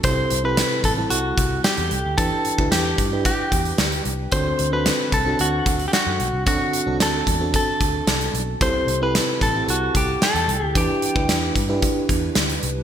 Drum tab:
HH |x-x-x-x-x-x-xxx-|x-x-x-x-x-xxxxx-|x-x-x-x-x-xxx-x-|x-x-x-x-x-x-xxx-|
SD |----o-------o---|----o-------o---|----o-------o---|----o-------o---|
BD |o-----o---o-----|o--o--o-o-o-----|o-----o---o-----|o-----o-o-o-----|

HH |x-x-x-x-x-x-xxx-|x-x-x-x-x-x-xxx-|
SD |----o-------o---|----o-------o---|
BD |o-----o---o-----|o--o--o-o-o-----|